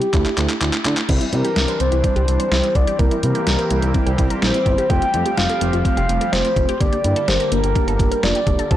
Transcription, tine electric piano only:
0.14 A3 D4 E4
0.38 A3 D4 E4
0.61 A3 D4 E4
0.85 A3 D4 E4
1.09 G3 C4 E4
1.33 G3 C4 E4
1.57 G3 C4 D4
1.80 G3 C4 E4
2.04 G3 C4 E4
2.28 G3 C4 E4
2.52 G3 C4 E4
2.76 G3 C4 E4
3.00 G3 C4 E4
3.23 G3 C4 E4
3.47 G3 C4 G4
3.71 G3 C4 E4
3.95 G3 C4 E4
4.19 G3 C4 E4
4.42 G3 C4 E4
4.66 G3 C4 E4
4.90 A3 C4 F4
5.14 A3 C4 F4
5.37 A3 C4 F4
5.61 A3 C4 F4
5.85 A3 C4 F4
6.09 A3 C4 F4
6.33 A3 C4 F4
6.57 A3 C4 F4
6.80 A#3 D4 G4
7.04 A#3 D4 E4
7.28 A#3 D4 A#4
7.52 A#3 D4 G4
7.75 A#3 D4 G4
8.00 A#3 D4 G4
8.23 A#3 D4 F4
8.47 A#3 D4 G4
8.71 C4 E4 G4

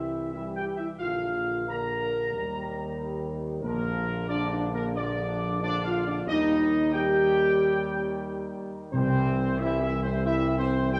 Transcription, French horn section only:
Already playing: E4
0.33 E4
0.58 G4
0.79 E4
0.99 F4
1.68 A#4
3.63 A#3
4.29 D4
4.52 D4
4.73 A#3
4.97 D4
5.62 D4
5.86 F4
6.07 D4
6.30 D#4
6.94 G4
8.92 C4
9.59 E4
9.81 E4
10.03 C4
10.24 E4
10.58 C4
10.92 G4

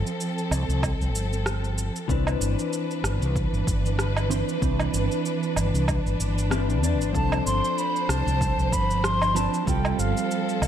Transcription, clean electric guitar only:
2.08 E3 C4 D4 B4
4.30 E3 C4 D4 C5
4.60 E3 C4 D4 B4
6.50 E3 C4 D4 B4
6.82 E3 C4 D4 D5
7.13 F3 C4 D4 A4
9.35 F3 C4 D4 B4
9.65 G3 C4 F4 A4

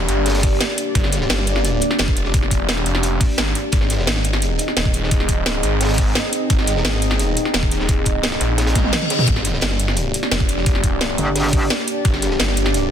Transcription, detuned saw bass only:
0.08 G1
0.95 G1
1.30 G1
1.99 F1
2.59 E1
2.86 F1
3.38 G#1
3.73 G#1
4.07 G#1
4.77 D#1
5.37 D1
5.63 G#1
6.50 G#1
6.85 G#1
7.54 D#1
8.41 A#1
9.27 G1
9.62 G1
10.32 F1
12.05 G1
12.40 G1

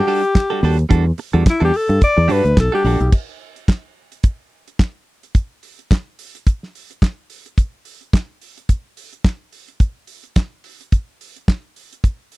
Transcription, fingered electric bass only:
0.63 D#2
0.91 E2
1.34 E2
1.61 E2
1.89 G2
2.17 E2
2.29 G2
2.44 D2
2.57 B1
2.84 A#1
3.00 B1

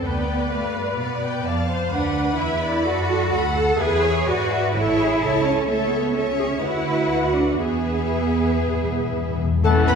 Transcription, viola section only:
0.04 B4
1.46 D5
1.69 C5
1.93 B4
2.85 A4
3.09 A4
3.79 B4
4.04 C#5
4.28 B4
4.75 A4
4.99 G#4
5.22 A4
5.69 A4
6.16 A4
6.39 G#4
6.63 F#4
7.62 G#4
9.65 E3 A3

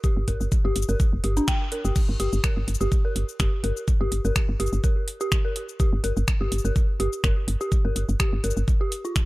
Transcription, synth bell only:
0.04 G4
0.28 A#4
0.65 G4
0.89 A#4
1.24 G4
1.37 D4
1.48 G5
1.72 A#4
1.85 G4
2.20 G4
2.44 A#4
2.81 G4
3.05 A#4
3.40 G4
3.64 A#4
4.01 G4
4.25 A#4
4.60 G4
4.84 A#4
5.21 G4
5.45 A#4
5.80 G4
6.04 A#4
6.41 G4
6.65 A#4
7.00 G4
7.24 A#4
7.61 G4
7.85 A#4
8.20 G4
8.44 A#4
8.81 G4
9.05 F4

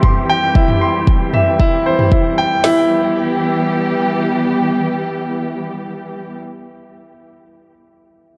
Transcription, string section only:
Already playing: E3 G3 C4 G4
2.64 E3 G3 B3 G4

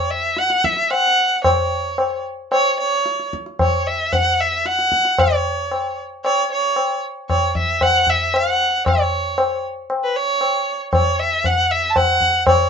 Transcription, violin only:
Already playing: C#5
0.10 E5
0.38 F#5
0.64 E5
0.91 F#5
1.44 C#5
2.52 C#5
2.80 C#5
3.61 C#5
3.87 E5
4.13 F#5
4.40 E5
4.66 F#5
5.19 C#5
6.25 C#5
6.52 C#5
7.29 C#5
7.57 E5
7.82 F#5
8.10 E5
8.36 F#5
8.88 C#5
10.04 B4
10.16 C#5
10.93 C#5
11.20 E5
11.46 F#5
11.71 E5
11.90 A5
11.97 F#5
12.49 C#5

